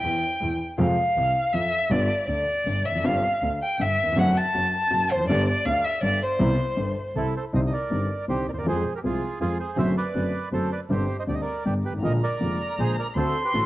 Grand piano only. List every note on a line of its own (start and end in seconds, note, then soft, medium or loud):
0.04 0.20 E2 medium
0.04 0.20 E3 soft
0.41 0.57 E2 medium
0.41 0.57 E3 medium
0.78 0.94 F2 medium
0.78 0.94 C3 medium
0.78 0.94 F3 medium
0.78 0.94 G#3 medium
0.78 0.94 F4 medium
1.17 1.32 C2 medium
1.17 1.32 C3 medium
1.54 1.69 F2 medium
1.54 1.69 F3 medium
1.90 2.06 G1 medium
1.90 2.06 G2 medium
1.90 2.06 D3 medium
1.90 2.06 G3 medium
1.90 2.06 B3 medium
1.90 2.06 F4 medium
2.28 2.44 D2 soft
2.28 2.44 D3 soft
2.66 2.82 G1 soft
2.66 2.82 G2 medium
2.91 2.95 E2 soft
2.95 3.00 F2 medium
3.00 3.05 F#2 medium
3.00 3.20 G3 medium
3.04 3.20 G1 medium
3.04 3.20 G2 medium
3.04 3.20 D3 medium
3.04 3.20 C4 medium
3.04 3.20 F4 medium
3.42 3.58 D2 soft
3.42 3.58 D3 soft
3.79 3.95 G1 soft
3.79 3.95 G2 medium
4.03 4.08 D#2 soft
4.08 4.13 E2 medium
4.12 4.17 F2 medium
4.16 4.33 F#2 medium
4.16 4.33 D3 medium
4.16 4.33 F#3 medium
4.16 4.33 A3 medium
4.16 4.33 C4 medium
4.16 4.33 F#4 medium
4.55 4.70 F#2 medium
4.55 4.70 F#3 medium
4.91 5.07 F#2 medium
4.91 5.07 F#3 medium
5.15 5.19 E2 soft
5.20 5.24 F2 medium
5.25 5.29 F#2 medium
5.29 5.45 G1 medium
5.29 5.45 G2 medium
5.29 5.44 D3 medium
5.29 5.45 G3 medium
5.29 5.45 B3 medium
5.29 5.45 G4 medium
5.66 5.81 D2 medium
5.66 5.81 D3 medium
6.03 6.18 G1 medium
6.03 6.18 G2 medium
6.39 6.55 C2 medium
6.39 6.55 C3 medium
6.39 6.55 G3 medium
6.39 6.55 B3 medium
6.39 6.55 E4 medium
6.77 6.93 G1 medium
6.77 6.93 G2 medium
7.15 7.32 C2 medium
7.15 7.32 C3 medium
7.53 7.69 C2 medium
7.53 7.69 C3 medium
7.53 7.69 D3 medium
7.53 7.69 G3 medium
7.53 7.69 C4 soft
7.53 7.69 D#4 medium
7.91 8.07 G1 soft
7.91 8.07 G2 soft
7.91 8.07 D3 soft
7.91 8.07 G3 soft
7.91 8.07 C4 soft
7.91 8.07 D#4 soft
8.28 8.44 C2 soft
8.28 8.44 C3 soft
8.28 8.44 D3 soft
8.28 8.45 G3 soft
8.28 8.45 C4 soft
8.28 8.45 D#4 soft
8.53 8.57 D2 soft
8.58 8.62 D#2 soft
8.62 8.67 E2 medium
8.66 8.82 F2 medium
8.66 8.82 F3 medium
8.66 8.82 G#3 medium
8.66 8.82 C4 medium
8.66 8.82 G#4 medium
9.04 9.19 C2 soft
9.04 9.19 C3 soft
9.04 9.19 F3 soft
9.04 9.19 G#3 soft
9.04 9.20 C4 soft
9.04 9.19 G#4 soft
9.41 9.56 F2 medium
9.41 9.56 F3 soft
9.41 9.56 G#3 soft
9.41 9.56 C4 soft
9.41 9.57 G#4 soft
9.77 9.93 F#2 medium
9.77 9.93 D3 medium
9.77 9.93 F#3 medium
9.77 9.93 A3 medium
9.77 9.93 C4 medium
9.77 9.93 F#4 medium
10.15 10.30 F#2 soft
10.15 10.30 D3 soft
10.15 10.31 F#3 soft
10.15 10.31 A3 soft
10.15 10.31 C4 soft
10.15 10.31 F#4 soft
10.52 10.68 F#2 soft
10.52 10.68 D3 soft
10.52 10.68 F#3 soft
10.52 10.68 A3 soft
10.52 10.68 C4 soft
10.52 10.68 F#4 soft
10.90 11.06 G1 medium
10.90 11.06 G2 medium
10.90 11.06 D3 medium
10.90 11.05 G3 medium
10.90 11.06 C4 medium
10.90 11.06 G4 medium
11.27 11.43 D2 soft
11.27 11.44 D3 soft
11.27 11.43 G3 soft
11.27 11.43 C4 soft
11.27 11.43 G4 soft
11.65 11.81 G1 soft
11.65 11.81 G2 soft
11.65 11.81 D3 soft
11.65 11.81 G3 soft
11.65 11.81 B3 soft
11.65 11.82 G4 soft
11.90 11.94 G1 soft
11.90 11.98 G#1 soft
11.98 12.03 A1 medium
11.98 12.18 D3 medium
12.03 12.19 A#1 medium
12.03 12.19 A#2 medium
12.03 12.19 G#3 soft
12.03 12.19 A#3 soft
12.03 12.19 F4 medium
12.41 12.57 F1 soft
12.41 12.57 F2 soft
12.41 12.57 D3 soft
12.41 12.57 G#3 soft
12.41 12.57 A#3 soft
12.41 12.57 F4 soft
12.78 12.95 A#1 soft
12.78 12.95 A#2 soft
12.78 12.94 D3 soft
12.78 12.94 G#3 soft
12.78 12.95 A#3 soft
12.78 12.95 F4 soft
13.16 13.32 D2 medium
13.16 13.32 D3 medium
13.16 13.32 A3 medium
13.16 13.32 C4 medium
13.16 13.32 F#4 medium
13.54 13.66 A1 soft
13.54 13.66 A2 medium
13.54 13.66 D3 soft
13.54 13.66 A3 soft
13.54 13.66 C4 soft
13.54 13.66 F#4 soft